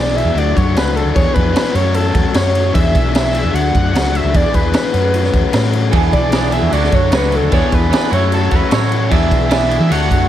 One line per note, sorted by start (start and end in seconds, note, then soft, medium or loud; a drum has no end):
0.00 0.23 B1 medium
0.00 0.34 E3 medium
0.00 0.16 B3 loud
0.00 0.15 D4 loud
0.00 0.13 G#4 loud
0.00 0.18 D5 medium
0.15 0.35 B3 medium
0.15 0.35 D4 medium
0.15 0.34 G#4 medium
0.15 0.40 E5 loud
0.15 crash medium
0.24 0.34 E2 medium
0.34 0.54 D2 loud
0.34 0.75 D3 loud
0.34 0.72 F#3 loud
0.34 0.56 A3 loud
0.34 0.55 D4 loud
0.34 0.53 F#4 loud
0.34 0.58 D5 loud
0.34 crash medium
0.55 0.74 F#2 medium
0.55 0.74 A3 medium
0.55 0.74 D4 medium
0.55 0.75 F#4 medium
0.55 0.79 C#5 loud
0.55 kick medium
0.55 crash medium
0.74 1.03 C#2 loud
0.74 1.13 F#3 medium
0.74 1.14 A3 medium
0.74 1.14 D4 medium
0.74 1.14 F#4 loud
0.74 0.97 B4 medium
0.74 snare loud
0.74 crash medium
0.96 1.15 A4 medium
0.96 crash medium
1.04 1.14 D2 medium
1.14 1.25 E2 loud
1.14 1.51 E3 medium
1.14 1.35 B3 loud
1.14 1.34 D4 loud
1.14 1.32 G#4 loud
1.14 1.35 C#5 loud
1.14 kick loud
1.14 crash medium
1.34 1.54 F2 medium
1.34 1.53 B3 medium
1.34 1.53 D4 medium
1.34 1.54 G#4 medium
1.34 1.53 B4 loud
1.34 kick medium
1.34 crash medium
1.53 1.73 E3 loud
1.53 1.73 B3 loud
1.53 1.73 D4 loud
1.53 1.71 G#4 loud
1.53 1.77 B4 medium
1.53 snare loud
1.53 crash medium
1.72 2.12 F#2 loud
1.72 2.31 F#3 medium
1.72 2.14 A3 medium
1.72 2.13 C#4 loud
1.72 2.12 F#4 loud
1.72 1.96 C#5 loud
1.72 crash medium
1.94 2.37 A4 loud
1.94 crash medium
2.13 2.24 E2 medium
2.13 2.32 A3 medium
2.13 2.33 C#4 medium
2.13 2.33 F#4 medium
2.13 kick loud
2.13 crash medium
2.32 2.72 F#2 medium
2.32 2.72 F#3 medium
2.32 2.73 A3 medium
2.32 2.73 C#4 loud
2.32 2.73 F#4 medium
2.32 2.74 C#5 loud
2.32 snare loud
2.32 crash loud
2.55 crash medium
2.72 2.93 E2 loud
2.72 3.10 E3 medium
2.72 2.93 B3 medium
2.72 2.92 D4 loud
2.72 2.91 G#4 loud
2.72 3.11 E5 loud
2.72 kick loud
2.72 crash medium
2.92 3.42 B1 medium
2.92 3.11 B3 medium
2.92 3.12 D4 medium
2.92 3.13 G#4 medium
2.92 kick medium
2.92 crash medium
3.11 3.51 E3 loud
3.11 3.34 B3 medium
3.11 3.32 D4 loud
3.11 3.31 G#4 loud
3.11 crash medium
3.16 3.56 E5 loud
3.16 snare loud
3.32 3.53 B3 medium
3.32 3.52 D4 medium
3.32 3.52 G#4 medium
3.32 crash medium
3.44 3.53 E2 medium
3.52 3.72 D2 loud
3.52 3.93 D3 loud
3.52 3.91 F#3 loud
3.52 3.74 A3 loud
3.52 3.72 D4 loud
3.52 3.71 F#4 loud
3.52 4.17 F#5 loud
3.52 crash medium
3.72 3.92 F#2 medium
3.72 3.92 A3 medium
3.72 3.93 D4 medium
3.72 3.94 F#4 medium
3.72 kick medium
3.72 crash medium
3.93 4.21 C#2 medium
3.93 4.32 F#3 medium
3.93 4.32 A3 medium
3.93 4.33 D4 medium
3.93 4.33 F#4 medium
3.93 snare loud
3.93 crash medium
4.15 4.37 E5 loud
4.15 crash medium
4.24 4.33 C#2 medium
4.32 4.43 E2 loud
4.32 4.71 E3 medium
4.32 4.54 B3 medium
4.32 4.53 D4 medium
4.32 4.51 G#4 loud
4.32 4.56 D5 loud
4.32 kick loud
4.32 crash medium
4.53 4.73 E2 medium
4.53 4.72 B3 medium
4.53 4.73 D4 medium
4.53 4.74 G#4 medium
4.53 5.73 B4 loud
4.53 kick medium
4.53 crash medium
4.72 4.91 E3 loud
4.72 4.92 B3 medium
4.72 4.92 D4 loud
4.72 4.92 G#4 medium
4.72 snare loud
4.72 crash medium
4.92 5.31 F#2 loud
4.92 5.51 F#3 medium
4.92 5.34 A3 medium
4.92 5.33 C#4 medium
4.92 5.32 F#4 loud
4.92 crash medium
5.14 crash medium
5.24 snare soft
5.33 5.43 E2 medium
5.33 5.52 A3 medium
5.33 5.52 C#4 medium
5.33 5.53 F#4 medium
5.33 kick medium
5.33 crash medium
5.52 5.90 A2 medium
5.52 5.91 F#3 medium
5.52 5.91 A3 medium
5.52 5.92 C#4 medium
5.52 5.92 F#4 medium
5.52 snare loud
5.52 crash medium
5.73 crash medium
5.92 6.12 E2 loud
5.92 6.30 E3 medium
5.92 6.13 B3 medium
5.92 6.12 D4 medium
5.92 6.11 G#4 loud
5.92 kick loud
5.92 crash medium
6.12 6.60 B1 medium
6.12 6.31 B3 medium
6.12 6.32 D4 medium
6.12 6.33 G#4 medium
6.12 6.50 D5 medium
6.12 kick medium
6.12 crash medium
6.32 6.71 E3 medium
6.32 6.53 B3 loud
6.32 6.51 D4 loud
6.32 6.50 G#4 loud
6.32 snare loud
6.32 crash medium
6.51 6.71 B3 medium
6.51 6.71 D4 medium
6.51 6.70 G#4 medium
6.51 6.71 E5 loud
6.51 crash medium
6.62 6.71 E2 medium
6.70 6.91 D2 loud
6.70 7.11 D3 loud
6.70 7.10 F#3 loud
6.70 6.93 A3 loud
6.70 6.91 D4 loud
6.70 6.90 F#4 loud
6.70 6.90 C#5 medium
6.70 6.96 D5 loud
6.70 crash medium
6.84 snare soft
6.91 7.11 F#2 medium
6.91 7.11 A3 medium
6.91 7.12 D4 medium
6.91 7.12 F#4 medium
6.91 7.13 C#5 medium
6.91 7.16 C#5 loud
6.91 kick medium
6.91 crash medium
7.11 7.40 C#2 loud
7.11 7.50 F#3 medium
7.11 7.50 A3 medium
7.11 7.51 D4 medium
7.11 7.51 F#4 medium
7.11 7.37 B4 loud
7.11 7.51 C#5 medium
7.11 snare loud
7.11 crash medium
7.32 7.53 A4 medium
7.32 crash medium
7.42 7.51 D2 medium
7.51 7.61 E2 loud
7.51 7.89 E3 medium
7.51 7.72 B3 loud
7.51 7.71 D4 loud
7.51 7.70 G#4 loud
7.51 7.75 C#5 loud
7.51 7.92 D5 loud
7.51 kick loud
7.51 crash medium
7.71 7.91 E2 medium
7.71 7.90 B3 medium
7.71 7.91 D4 medium
7.71 7.92 G#4 medium
7.71 7.92 B4 medium
7.71 kick medium
7.71 crash medium
7.90 8.09 E3 medium
7.90 8.10 B3 loud
7.90 8.10 D4 medium
7.90 8.10 G#4 loud
7.90 8.10 D5 loud
7.90 snare loud
7.90 crash medium
7.95 8.15 B4 loud
8.10 8.49 F#2 loud
8.10 8.69 F#3 medium
8.10 8.52 A3 medium
8.10 8.51 C#4 medium
8.10 8.52 E4 medium
8.10 8.50 F#4 loud
8.10 8.49 C#5 loud
8.10 8.32 C#5 loud
8.10 crash medium
8.32 8.57 A4 loud
8.32 crash medium
8.50 8.61 E2 medium
8.50 8.71 A3 medium
8.50 8.71 C#4 medium
8.50 8.69 E4 medium
8.50 8.72 F#4 medium
8.50 8.71 C#5 medium
8.50 kick medium
8.50 crash medium
8.55 8.75 B4 loud
8.70 9.08 A2 medium
8.70 9.09 F#3 medium
8.70 9.10 A3 medium
8.70 9.10 C#4 medium
8.70 9.09 E4 medium
8.70 9.10 F#4 medium
8.70 9.10 C#5 medium
8.70 9.13 C#5 loud
8.70 snare loud
8.70 crash medium
8.92 crash medium
9.11 9.30 E2 loud
9.11 9.49 E3 medium
9.11 9.32 B3 loud
9.11 9.30 D4 medium
9.11 9.29 G#4 medium
9.11 9.51 D5 loud
9.11 9.51 E5 loud
9.11 kick loud
9.11 crash medium
9.30 9.78 B1 medium
9.30 9.50 B3 medium
9.30 9.51 D4 medium
9.30 9.52 G#4 medium
9.30 kick medium
9.30 crash medium
9.50 9.88 E3 medium
9.50 9.70 B3 loud
9.50 9.69 D4 loud
9.50 9.68 G#4 loud
9.50 9.68 D5 loud
9.50 9.93 E5 loud
9.50 snare loud
9.50 crash medium
9.69 9.89 B3 medium
9.69 9.89 D4 medium
9.69 9.88 G#4 medium
9.69 9.88 D5 medium
9.69 crash medium
9.80 9.89 E3 medium
9.89 10.09 D2 loud
9.89 10.29 D3 loud
9.89 10.28 F#3 loud
9.89 10.10 A3 loud
9.89 10.09 D4 loud
9.89 10.08 F#4 loud
9.89 10.08 C#5 loud
9.89 10.29 F#5 loud
9.89 crash medium
10.09 10.29 F#2 medium
10.09 10.29 A3 medium
10.09 10.29 D4 medium
10.09 10.29 F#4 medium
10.09 10.29 C#5 medium
10.09 kick medium
10.09 crash medium